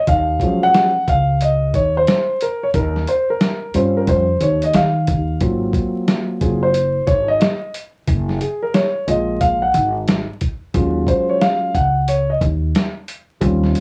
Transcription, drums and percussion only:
0.07 kick, closed hi-hat
0.40 kick, closed hi-hat
0.74 snare, closed hi-hat
1.08 kick, closed hi-hat
1.41 closed hi-hat
1.74 kick, closed hi-hat
2.07 snare, closed hi-hat
2.41 closed hi-hat
2.74 kick, closed hi-hat
2.96 snare
3.07 closed hi-hat
3.41 snare, closed hi-hat
3.74 closed hi-hat
4.07 kick, closed hi-hat
4.41 closed hi-hat
4.62 closed hi-hat
4.74 snare, closed hi-hat
5.07 kick, closed hi-hat
5.41 kick, closed hi-hat
5.73 kick, closed hi-hat
6.08 snare, closed hi-hat
6.41 kick, closed hi-hat
6.74 closed hi-hat
7.07 kick, closed hi-hat
7.41 snare, closed hi-hat
7.74 closed hi-hat
8.08 kick, closed hi-hat
8.29 snare
8.41 closed hi-hat
8.74 snare, closed hi-hat
9.08 closed hi-hat
9.41 kick, closed hi-hat
9.74 closed hi-hat
10.08 snare, closed hi-hat
10.41 kick, closed hi-hat
10.74 kick, closed hi-hat
11.07 kick, closed hi-hat
11.41 snare, closed hi-hat
11.75 kick, closed hi-hat
12.08 closed hi-hat
12.41 kick, closed hi-hat
12.75 snare, closed hi-hat
13.08 closed hi-hat
13.41 kick, closed hi-hat
13.64 snare
13.75 closed hi-hat

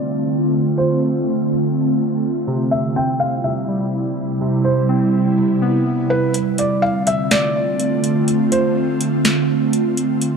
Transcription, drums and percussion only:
6.34 closed hi-hat
6.58 closed hi-hat
7.07 closed hi-hat
7.31 snare, closed hi-hat
7.79 closed hi-hat
8.04 closed hi-hat
8.28 closed hi-hat
8.52 closed hi-hat
9.01 closed hi-hat
9.25 snare, closed hi-hat
9.73 closed hi-hat
9.97 closed hi-hat
10.21 closed hi-hat

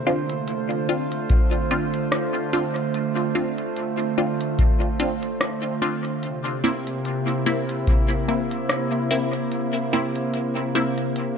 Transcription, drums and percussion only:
0.30 closed hi-hat
0.48 closed hi-hat
0.71 closed hi-hat
1.12 closed hi-hat
1.30 kick, closed hi-hat
1.53 closed hi-hat
1.94 closed hi-hat
2.12 cross-stick, closed hi-hat
2.35 closed hi-hat
2.76 closed hi-hat
2.94 closed hi-hat
3.17 closed hi-hat
3.58 closed hi-hat
3.77 closed hi-hat
4.00 closed hi-hat
4.41 closed hi-hat
4.59 kick, closed hi-hat
4.82 closed hi-hat
5.23 closed hi-hat
5.41 cross-stick, closed hi-hat
5.64 closed hi-hat
6.05 closed hi-hat
6.23 closed hi-hat
6.46 closed hi-hat
6.87 closed hi-hat
7.05 closed hi-hat
7.28 closed hi-hat
7.69 closed hi-hat
7.87 kick, closed hi-hat
8.10 closed hi-hat
8.51 closed hi-hat
8.69 cross-stick, closed hi-hat
8.92 closed hi-hat
9.33 closed hi-hat
9.52 closed hi-hat
9.75 closed hi-hat
10.16 closed hi-hat
10.34 closed hi-hat
10.57 closed hi-hat
10.98 closed hi-hat
11.16 closed hi-hat

